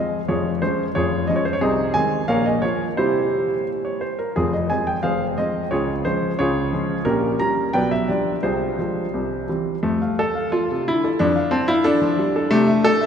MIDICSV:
0, 0, Header, 1, 2, 480
1, 0, Start_track
1, 0, Key_signature, -4, "minor"
1, 0, Tempo, 668896
1, 212, Time_signature, 2, 2, 24, 8
1, 2131, Tempo, 693642
1, 3571, Tempo, 672646
1, 5491, Tempo, 695249
1, 6935, Key_signature, -1, "major"
1, 7411, Tempo, 665927
1, 9242, End_track
2, 0, Start_track
2, 0, Title_t, "Grand piano"
2, 0, Program_c, 0, 0
2, 0, Note_on_c, 0, 53, 40
2, 0, Note_on_c, 0, 56, 38
2, 0, Note_on_c, 0, 60, 41
2, 0, Note_on_c, 0, 75, 67
2, 109, Note_off_c, 0, 75, 0
2, 140, Note_off_c, 0, 53, 0
2, 142, Note_off_c, 0, 56, 0
2, 144, Note_off_c, 0, 60, 0
2, 204, Note_on_c, 0, 73, 65
2, 206, Note_on_c, 0, 29, 46
2, 206, Note_on_c, 0, 41, 52
2, 207, Note_on_c, 0, 65, 54
2, 210, Note_on_c, 0, 68, 52
2, 351, Note_off_c, 0, 73, 0
2, 434, Note_off_c, 0, 65, 0
2, 435, Note_off_c, 0, 68, 0
2, 443, Note_off_c, 0, 29, 0
2, 443, Note_off_c, 0, 41, 0
2, 444, Note_on_c, 0, 72, 70
2, 448, Note_on_c, 0, 53, 44
2, 448, Note_on_c, 0, 56, 46
2, 451, Note_on_c, 0, 61, 47
2, 591, Note_off_c, 0, 72, 0
2, 623, Note_off_c, 0, 53, 0
2, 623, Note_off_c, 0, 56, 0
2, 625, Note_off_c, 0, 61, 0
2, 682, Note_on_c, 0, 73, 77
2, 687, Note_on_c, 0, 41, 47
2, 689, Note_on_c, 0, 29, 52
2, 690, Note_on_c, 0, 68, 58
2, 692, Note_on_c, 0, 65, 57
2, 898, Note_off_c, 0, 68, 0
2, 899, Note_off_c, 0, 65, 0
2, 910, Note_off_c, 0, 73, 0
2, 913, Note_on_c, 0, 75, 70
2, 921, Note_off_c, 0, 41, 0
2, 922, Note_off_c, 0, 29, 0
2, 929, Note_on_c, 0, 53, 43
2, 931, Note_on_c, 0, 56, 43
2, 933, Note_on_c, 0, 61, 48
2, 975, Note_on_c, 0, 73, 68
2, 978, Note_off_c, 0, 75, 0
2, 1040, Note_off_c, 0, 73, 0
2, 1042, Note_on_c, 0, 72, 70
2, 1099, Note_on_c, 0, 73, 71
2, 1100, Note_off_c, 0, 53, 0
2, 1101, Note_off_c, 0, 56, 0
2, 1102, Note_off_c, 0, 61, 0
2, 1105, Note_off_c, 0, 72, 0
2, 1157, Note_on_c, 0, 68, 77
2, 1161, Note_on_c, 0, 36, 56
2, 1162, Note_on_c, 0, 48, 65
2, 1164, Note_off_c, 0, 73, 0
2, 1164, Note_on_c, 0, 60, 60
2, 1165, Note_on_c, 0, 63, 65
2, 1385, Note_off_c, 0, 60, 0
2, 1386, Note_off_c, 0, 63, 0
2, 1391, Note_on_c, 0, 80, 87
2, 1393, Note_off_c, 0, 36, 0
2, 1394, Note_off_c, 0, 48, 0
2, 1396, Note_on_c, 0, 51, 49
2, 1398, Note_off_c, 0, 68, 0
2, 1399, Note_on_c, 0, 56, 50
2, 1405, Note_on_c, 0, 60, 51
2, 1571, Note_off_c, 0, 51, 0
2, 1573, Note_off_c, 0, 56, 0
2, 1576, Note_off_c, 0, 60, 0
2, 1612, Note_off_c, 0, 80, 0
2, 1636, Note_on_c, 0, 77, 85
2, 1641, Note_on_c, 0, 34, 59
2, 1641, Note_on_c, 0, 46, 66
2, 1644, Note_on_c, 0, 70, 68
2, 1645, Note_on_c, 0, 73, 62
2, 1756, Note_off_c, 0, 70, 0
2, 1757, Note_off_c, 0, 73, 0
2, 1760, Note_off_c, 0, 77, 0
2, 1765, Note_on_c, 0, 75, 71
2, 1877, Note_off_c, 0, 34, 0
2, 1877, Note_off_c, 0, 46, 0
2, 1879, Note_on_c, 0, 73, 69
2, 1883, Note_on_c, 0, 53, 46
2, 1886, Note_off_c, 0, 75, 0
2, 1887, Note_on_c, 0, 58, 43
2, 1889, Note_on_c, 0, 65, 45
2, 2028, Note_off_c, 0, 73, 0
2, 2061, Note_off_c, 0, 53, 0
2, 2063, Note_off_c, 0, 58, 0
2, 2065, Note_off_c, 0, 65, 0
2, 2134, Note_on_c, 0, 72, 71
2, 2137, Note_on_c, 0, 55, 38
2, 2138, Note_on_c, 0, 60, 36
2, 2139, Note_on_c, 0, 64, 55
2, 2141, Note_on_c, 0, 48, 50
2, 2142, Note_on_c, 0, 67, 54
2, 2474, Note_off_c, 0, 48, 0
2, 2519, Note_off_c, 0, 55, 0
2, 2519, Note_off_c, 0, 60, 0
2, 2588, Note_off_c, 0, 64, 0
2, 2589, Note_off_c, 0, 67, 0
2, 2613, Note_off_c, 0, 72, 0
2, 2738, Note_on_c, 0, 73, 51
2, 2851, Note_on_c, 0, 72, 59
2, 2856, Note_off_c, 0, 73, 0
2, 2973, Note_off_c, 0, 72, 0
2, 2973, Note_on_c, 0, 70, 54
2, 3093, Note_on_c, 0, 68, 70
2, 3094, Note_off_c, 0, 70, 0
2, 3097, Note_on_c, 0, 29, 50
2, 3101, Note_on_c, 0, 41, 53
2, 3102, Note_on_c, 0, 60, 53
2, 3103, Note_on_c, 0, 65, 51
2, 3210, Note_off_c, 0, 60, 0
2, 3210, Note_off_c, 0, 65, 0
2, 3212, Note_on_c, 0, 75, 61
2, 3213, Note_off_c, 0, 68, 0
2, 3326, Note_on_c, 0, 80, 73
2, 3327, Note_off_c, 0, 29, 0
2, 3330, Note_off_c, 0, 41, 0
2, 3332, Note_off_c, 0, 75, 0
2, 3335, Note_on_c, 0, 53, 40
2, 3335, Note_on_c, 0, 56, 39
2, 3339, Note_on_c, 0, 60, 47
2, 3446, Note_on_c, 0, 79, 69
2, 3448, Note_off_c, 0, 80, 0
2, 3505, Note_off_c, 0, 53, 0
2, 3505, Note_off_c, 0, 56, 0
2, 3507, Note_off_c, 0, 60, 0
2, 3555, Note_on_c, 0, 77, 75
2, 3559, Note_on_c, 0, 29, 49
2, 3560, Note_on_c, 0, 41, 46
2, 3562, Note_on_c, 0, 68, 54
2, 3563, Note_on_c, 0, 72, 54
2, 3567, Note_off_c, 0, 79, 0
2, 3705, Note_off_c, 0, 77, 0
2, 3792, Note_off_c, 0, 68, 0
2, 3792, Note_off_c, 0, 72, 0
2, 3800, Note_off_c, 0, 29, 0
2, 3801, Note_off_c, 0, 41, 0
2, 3804, Note_on_c, 0, 75, 73
2, 3806, Note_on_c, 0, 53, 41
2, 3813, Note_on_c, 0, 56, 37
2, 3815, Note_on_c, 0, 60, 47
2, 3983, Note_off_c, 0, 53, 0
2, 3987, Note_off_c, 0, 56, 0
2, 3988, Note_off_c, 0, 60, 0
2, 4040, Note_on_c, 0, 73, 71
2, 4046, Note_on_c, 0, 37, 50
2, 4046, Note_on_c, 0, 68, 59
2, 4049, Note_on_c, 0, 49, 56
2, 4050, Note_off_c, 0, 75, 0
2, 4050, Note_on_c, 0, 65, 60
2, 4188, Note_off_c, 0, 73, 0
2, 4273, Note_off_c, 0, 68, 0
2, 4275, Note_off_c, 0, 65, 0
2, 4282, Note_off_c, 0, 37, 0
2, 4283, Note_on_c, 0, 72, 77
2, 4284, Note_off_c, 0, 49, 0
2, 4290, Note_on_c, 0, 53, 43
2, 4290, Note_on_c, 0, 56, 46
2, 4295, Note_on_c, 0, 61, 45
2, 4463, Note_off_c, 0, 53, 0
2, 4463, Note_off_c, 0, 56, 0
2, 4466, Note_off_c, 0, 61, 0
2, 4525, Note_on_c, 0, 73, 83
2, 4527, Note_off_c, 0, 72, 0
2, 4528, Note_on_c, 0, 49, 58
2, 4530, Note_on_c, 0, 37, 57
2, 4533, Note_on_c, 0, 65, 65
2, 4535, Note_on_c, 0, 68, 64
2, 4761, Note_off_c, 0, 49, 0
2, 4762, Note_off_c, 0, 37, 0
2, 4769, Note_on_c, 0, 53, 48
2, 4773, Note_on_c, 0, 56, 49
2, 4776, Note_on_c, 0, 61, 51
2, 4940, Note_off_c, 0, 53, 0
2, 4942, Note_off_c, 0, 56, 0
2, 4944, Note_off_c, 0, 61, 0
2, 4978, Note_off_c, 0, 65, 0
2, 4979, Note_off_c, 0, 68, 0
2, 4997, Note_on_c, 0, 70, 84
2, 5002, Note_off_c, 0, 73, 0
2, 5003, Note_on_c, 0, 34, 60
2, 5005, Note_on_c, 0, 46, 60
2, 5005, Note_on_c, 0, 61, 56
2, 5007, Note_on_c, 0, 67, 56
2, 5228, Note_off_c, 0, 61, 0
2, 5229, Note_off_c, 0, 67, 0
2, 5236, Note_off_c, 0, 34, 0
2, 5237, Note_off_c, 0, 46, 0
2, 5241, Note_off_c, 0, 70, 0
2, 5244, Note_on_c, 0, 82, 85
2, 5251, Note_on_c, 0, 55, 46
2, 5251, Note_on_c, 0, 61, 49
2, 5425, Note_off_c, 0, 55, 0
2, 5425, Note_off_c, 0, 61, 0
2, 5464, Note_off_c, 0, 82, 0
2, 5486, Note_on_c, 0, 79, 85
2, 5491, Note_on_c, 0, 35, 58
2, 5492, Note_on_c, 0, 47, 60
2, 5492, Note_on_c, 0, 71, 68
2, 5495, Note_on_c, 0, 74, 64
2, 5602, Note_off_c, 0, 71, 0
2, 5603, Note_off_c, 0, 74, 0
2, 5607, Note_off_c, 0, 79, 0
2, 5610, Note_on_c, 0, 76, 73
2, 5723, Note_off_c, 0, 35, 0
2, 5723, Note_off_c, 0, 47, 0
2, 5726, Note_on_c, 0, 74, 60
2, 5729, Note_off_c, 0, 76, 0
2, 5733, Note_on_c, 0, 53, 39
2, 5735, Note_on_c, 0, 55, 40
2, 5741, Note_on_c, 0, 62, 47
2, 5906, Note_off_c, 0, 53, 0
2, 5907, Note_off_c, 0, 55, 0
2, 5911, Note_off_c, 0, 62, 0
2, 5946, Note_off_c, 0, 74, 0
2, 5966, Note_on_c, 0, 72, 66
2, 5969, Note_on_c, 0, 36, 49
2, 5970, Note_on_c, 0, 48, 54
2, 5974, Note_on_c, 0, 68, 50
2, 5977, Note_on_c, 0, 65, 47
2, 6205, Note_off_c, 0, 36, 0
2, 6206, Note_off_c, 0, 48, 0
2, 6209, Note_off_c, 0, 65, 0
2, 6214, Note_on_c, 0, 53, 37
2, 6216, Note_on_c, 0, 56, 37
2, 6220, Note_on_c, 0, 65, 44
2, 6386, Note_off_c, 0, 53, 0
2, 6388, Note_off_c, 0, 56, 0
2, 6390, Note_off_c, 0, 65, 0
2, 6457, Note_on_c, 0, 36, 47
2, 6457, Note_on_c, 0, 48, 49
2, 6668, Note_off_c, 0, 68, 0
2, 6689, Note_off_c, 0, 36, 0
2, 6689, Note_off_c, 0, 48, 0
2, 6692, Note_off_c, 0, 72, 0
2, 6700, Note_on_c, 0, 52, 38
2, 6700, Note_on_c, 0, 55, 38
2, 6703, Note_on_c, 0, 60, 40
2, 6871, Note_off_c, 0, 52, 0
2, 6871, Note_off_c, 0, 55, 0
2, 6873, Note_off_c, 0, 60, 0
2, 6932, Note_on_c, 0, 57, 75
2, 6933, Note_on_c, 0, 41, 61
2, 7049, Note_off_c, 0, 41, 0
2, 7063, Note_on_c, 0, 77, 46
2, 7147, Note_off_c, 0, 57, 0
2, 7182, Note_off_c, 0, 77, 0
2, 7182, Note_on_c, 0, 69, 83
2, 7185, Note_on_c, 0, 81, 56
2, 7293, Note_on_c, 0, 77, 53
2, 7303, Note_off_c, 0, 81, 0
2, 7390, Note_off_c, 0, 69, 0
2, 7409, Note_on_c, 0, 65, 87
2, 7413, Note_on_c, 0, 69, 52
2, 7416, Note_off_c, 0, 77, 0
2, 7540, Note_off_c, 0, 69, 0
2, 7550, Note_on_c, 0, 48, 52
2, 7654, Note_off_c, 0, 65, 0
2, 7668, Note_on_c, 0, 64, 91
2, 7669, Note_off_c, 0, 48, 0
2, 7673, Note_on_c, 0, 50, 47
2, 7785, Note_off_c, 0, 50, 0
2, 7787, Note_on_c, 0, 69, 56
2, 7809, Note_off_c, 0, 64, 0
2, 7894, Note_on_c, 0, 62, 94
2, 7901, Note_off_c, 0, 69, 0
2, 7901, Note_on_c, 0, 41, 75
2, 8014, Note_off_c, 0, 41, 0
2, 8014, Note_on_c, 0, 77, 59
2, 8110, Note_off_c, 0, 62, 0
2, 8123, Note_on_c, 0, 60, 103
2, 8125, Note_on_c, 0, 81, 64
2, 8139, Note_off_c, 0, 77, 0
2, 8245, Note_on_c, 0, 64, 102
2, 8247, Note_off_c, 0, 60, 0
2, 8247, Note_on_c, 0, 77, 71
2, 8254, Note_off_c, 0, 81, 0
2, 8363, Note_on_c, 0, 62, 109
2, 8366, Note_off_c, 0, 64, 0
2, 8366, Note_on_c, 0, 69, 73
2, 8373, Note_off_c, 0, 77, 0
2, 8488, Note_on_c, 0, 53, 60
2, 8491, Note_off_c, 0, 69, 0
2, 8609, Note_on_c, 0, 55, 58
2, 8612, Note_off_c, 0, 53, 0
2, 8727, Note_off_c, 0, 55, 0
2, 8735, Note_on_c, 0, 69, 66
2, 8841, Note_on_c, 0, 57, 109
2, 8842, Note_off_c, 0, 62, 0
2, 8846, Note_on_c, 0, 48, 86
2, 8850, Note_off_c, 0, 69, 0
2, 8963, Note_off_c, 0, 48, 0
2, 8963, Note_on_c, 0, 76, 55
2, 9085, Note_off_c, 0, 57, 0
2, 9085, Note_on_c, 0, 69, 109
2, 9091, Note_on_c, 0, 81, 63
2, 9092, Note_off_c, 0, 76, 0
2, 9205, Note_on_c, 0, 76, 58
2, 9217, Note_off_c, 0, 81, 0
2, 9232, Note_off_c, 0, 69, 0
2, 9242, Note_off_c, 0, 76, 0
2, 9242, End_track
0, 0, End_of_file